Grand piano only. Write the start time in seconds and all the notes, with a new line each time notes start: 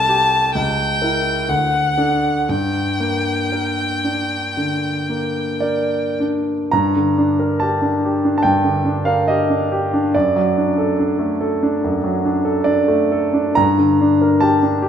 Already playing: C2 G3 A4
0.09 G4
0.55 C#2
1.02 E4 A#4
1.49 D2
1.98 D4 A4
2.49 G2
3.00 A#3
3.52 A#4
4.04 D4
4.57 D3
5.09 A#3
5.60 A#4 D5
6.20 D4
6.71 G2 A#5
6.96 D3
7.18 D4
7.39 A#4
7.60 G4 A5
7.82 D4
8.05 G4
8.25 D4
8.38 A5
8.43 G2 G5
8.65 D3
8.85 D4
9.05 A#4 F5
9.28 G4 D#5
9.50 D4
9.72 G4
9.93 D4
10.14 F#2 D5
10.36 F#3
10.58 D4
10.78 A4
10.99 D4
11.19 A3
11.41 A4
11.63 D4
11.84 F#2
12.04 F#3
12.25 D4
12.45 A4
12.64 D4 D5
12.88 A3
13.12 A4
13.33 D4
13.55 G2 A#5
13.78 D3
14.01 D4
14.22 A#4
14.40 G4 A5
14.63 D4
14.82 G4